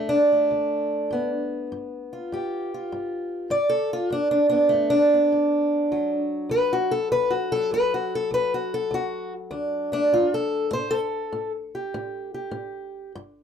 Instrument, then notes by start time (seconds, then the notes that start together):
steel-string acoustic guitar
Already playing: D2
0.09 D4
0.32 A3
0.51 D2
1.11 G2 B3
1.72 G2
2.13 F4
2.32 G2 G4
2.74 F4
2.92 G2
3.50 G2 D5
3.69 A4
3.93 F4
4.10 G2 D4
4.31 D4
4.49 B3 D4
4.69 A3
4.73 G2
4.90 D4
5.13 B3
5.32 G2
5.92 D2 F#3
6.49 D2 B4
6.73 F#4
6.91 A4
7.12 D2 B4
7.30 F#4
7.52 F#3 A4
7.72 D2 B4
7.94 F#4
8.15 A4
8.31 D2 B4
8.54 F#4
8.74 A4
8.91 D2 F#4
9.51 D2 D4
9.92 A3 D4
10.13 D2 F4
10.34 A4
10.71 A2 C5
10.91 A4
11.32 A2
11.75 G4
11.94 A2
12.34 G4
12.51 A2
13.15 G2